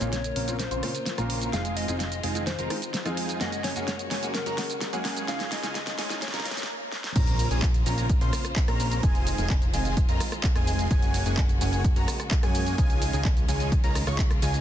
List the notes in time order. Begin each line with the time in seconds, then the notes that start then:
Already playing: C#3 A#3 F4 A#4 C#5, riser
0.00 A#1 A#2 A#3 C4 C#4 F4 G#4 G#5, closed hi-hat, shaker
0.13 C#5, snare, closed hi-hat, shaker
0.24 closed hi-hat, shaker
0.36 A#1 A#3 C4 C#4 F4 A#4 A#5, open hi-hat
0.47 A#2 A#3 C4 C#4 F4, closed hi-hat, shaker
0.59 C5, snare, closed hi-hat, shaker
0.71 A#1 A#3 C4 C#4 F4 C5 C6, closed hi-hat, shaker
0.82 A#2 A#3 C4 C#4 F4, cross-stick, open hi-hat
0.95 closed hi-hat, shaker
1.06 snare, closed hi-hat, shaker
1.17 A#1 A#2 A#3 C4 C#4 F4 A#4 C5 A#5, cross-stick, closed hi-hat, shaker
1.30 open hi-hat
1.42 closed hi-hat, shaker
1.53 F1 D#3 G#3 C4 D#4 F4 G#4 F5 G#5, snare, closed hi-hat, shaker
1.65 closed hi-hat, shaker
1.77 D#5, open hi-hat
1.88 F1 G#3 C4 D#4 F4 G#4 G#5, closed hi-hat, shaker
2.00 D#5, snare, closed hi-hat, shaker
2.12 closed hi-hat, shaker
2.23 F1 G#3 C4 D#4 F4 G#4 G#5, open hi-hat
2.35 G#3 C4 D#4 F4, closed hi-hat, shaker
2.47 C5, snare, closed hi-hat, shaker
2.59 F1 G#3 C4 D#4 F4 A#4 A#5, closed hi-hat, shaker
2.70 G#3 C4 D#4 F4, cross-stick, open hi-hat
2.82 closed hi-hat, shaker
2.94 snare, closed hi-hat, shaker
3.05 F2 G#3 C4 D#4 F4 G#4 G#5, cross-stick, closed hi-hat, shaker
3.17 open hi-hat
3.29 closed hi-hat, shaker
3.40 F#1 C#3 G#3 A#3 C#4 F#4 G#4 D#5 G#5, snare, closed hi-hat, shaker
3.52 closed hi-hat, shaker
3.64 C#5, snare, open hi-hat
3.75 F#1 G#3 A#3 C#4 F#4 G#4 G#5, closed hi-hat, shaker
3.88 C#5, snare, closed hi-hat, shaker
3.99 closed hi-hat, shaker
4.11 F#1 G#3 A#3 C#4 F#4 G#4 G#5, snare, open hi-hat
4.22 G#3 A#3 C#4 F#4, closed hi-hat, shaker
4.34 A#4, snare, closed hi-hat, shaker
4.46 F#1 G#3 A#3 C#4 F#4 A#4 A#5, closed hi-hat, shaker
4.57 G#3 A#3 C#4 F#4, snare, open hi-hat
4.70 closed hi-hat, shaker
4.81 snare, closed hi-hat, shaker
4.92 F#2 G#3 A#3 C#4 F#4 G#4 G#5, closed hi-hat, shaker
5.05 snare, open hi-hat
5.17 closed hi-hat, shaker
5.28 C#2 C#3 D#3 G#3 C#4 D#4 F4 G#4 F5 G#5, snare, closed hi-hat, shaker
5.40 snare, closed hi-hat, shaker
5.52 D#5, snare, open hi-hat
5.63 C#2 C#3 G#3 C#4 D#4 F4 G#4 G#5, snare, closed hi-hat, shaker
5.75 D#5, snare, closed hi-hat, shaker
5.87 snare, closed hi-hat, shaker
5.98 C#2 G#3 C#4 D#4 F4 G#4 G#5, snare, open hi-hat
6.10 C#3 G#3 C#4 D#4 F4, snare, closed hi-hat, shaker
6.22 C#5, snare, closed hi-hat, swell, shaker
6.28 snare
6.34 C#2 G#3 C#4 D#4 F4 A#4 A#5, snare, closed hi-hat, shaker
6.40 snare
6.45 snare, open hi-hat
6.51 snare
6.57 snare, closed hi-hat, shaker
6.63 snare
6.92 snare
7.04 snare
7.16 A#1 C#3 A#3 C4 C#4 F4 A#4 C5 A#5, kick, closed hi-hat, crash, impact, shaker
7.27 closed hi-hat, shaker
7.39 open hi-hat, shaker
7.51 A#1 A#3 C4 C#4 F4 G#4 G#5, closed hi-hat, shaker
7.62 kick, clap, closed hi-hat, shaker
7.74 closed hi-hat, shaker
7.86 A#1 A#3 C4 C#4 F4 A#4 A#5, open hi-hat, shaker
7.98 closed hi-hat, shaker
8.09 kick, closed hi-hat, shaker
8.21 A#1 A#3 C4 C#4 F4 C5 C6, closed hi-hat, shaker
8.33 cross-stick, open hi-hat, shaker
8.45 cross-stick, closed hi-hat, shaker
8.56 kick, clap, closed hi-hat, shaker
8.68 A#1 A#3 C4 C#4 F4 A#4 A#5, cross-stick, closed hi-hat, shaker
8.80 open hi-hat, shaker
8.91 closed hi-hat, shaker
9.03 F1 D#3 G#3 C4 D#4 F4 G#4 G#5, kick, closed hi-hat, shaker
9.15 closed hi-hat, shaker
9.27 open hi-hat, shaker
9.38 F1 G#3 C4 D#4 F4 G#4 G#5, closed hi-hat, shaker
9.50 kick, clap, closed hi-hat, shaker
9.62 closed hi-hat, shaker
9.74 F1 G#3 C4 D#4 F4 G#4 G#5, open hi-hat, shaker
9.85 closed hi-hat, shaker
9.97 kick, closed hi-hat, shaker
10.09 F1 G#3 C4 D#4 F4 A#4 A#5, closed hi-hat, shaker
10.20 cross-stick, open hi-hat, shaker
10.32 cross-stick, closed hi-hat, shaker
10.44 kick, clap, closed hi-hat, shaker
10.56 F1 G#3 C4 D#4 F4 G#4 G#5, cross-stick, closed hi-hat, shaker
10.67 open hi-hat, shaker
10.79 closed hi-hat, shaker
10.91 F#1 C#3 G#3 A#3 C#4 F#4 G#4 G#5, kick, closed hi-hat, shaker
11.02 closed hi-hat, shaker
11.14 open hi-hat, shaker
11.26 F#1 G#3 A#3 C#4 F#4 G#4 G#5, closed hi-hat, shaker
11.37 kick, clap, closed hi-hat, shaker
11.49 closed hi-hat, shaker
11.61 F#1 G#3 A#3 C#4 F#4 G#4 G#5, open hi-hat, shaker
11.73 closed hi-hat, shaker
11.84 kick, closed hi-hat, shaker
11.96 F#1 G#3 A#3 C#4 F#4 A#4 A#5, closed hi-hat, shaker
12.08 cross-stick, open hi-hat, shaker
12.20 cross-stick, closed hi-hat, shaker
12.31 kick, clap, closed hi-hat, shaker
12.43 F#2 G#3 A#3 C#4 F#4 G#4 G#5, cross-stick, closed hi-hat, shaker
12.55 open hi-hat, shaker
12.66 closed hi-hat, shaker
12.78 C#2 D#3 G#3 C#4 D#4 F4 G#4 G#5, kick, closed hi-hat, shaker
12.90 closed hi-hat, shaker
13.02 open hi-hat, shaker
13.13 C#2 G#3 C#4 D#4 F4 G#4 G#5, closed hi-hat, shaker
13.25 kick, clap, closed hi-hat, shaker
13.37 closed hi-hat, shaker
13.48 C#2 G#3 C#4 D#4 F4 G#4 G#5, open hi-hat, shaker
13.60 closed hi-hat, shaker
13.72 kick, closed hi-hat, shaker
13.84 C#2 G#3 C#4 D#4 F4 A#4 A#5, closed hi-hat, shaker
13.95 cross-stick, open hi-hat, shaker
14.07 C#2 G#3 C#4 D#4 F4 C#5 C#6, cross-stick, closed hi-hat, shaker
14.19 kick, clap, closed hi-hat, shaker
14.31 cross-stick, closed hi-hat, shaker
14.42 C#2 G#3 C#4 D#4 F4 G#4 G#5, open hi-hat, shaker
14.54 closed hi-hat, shaker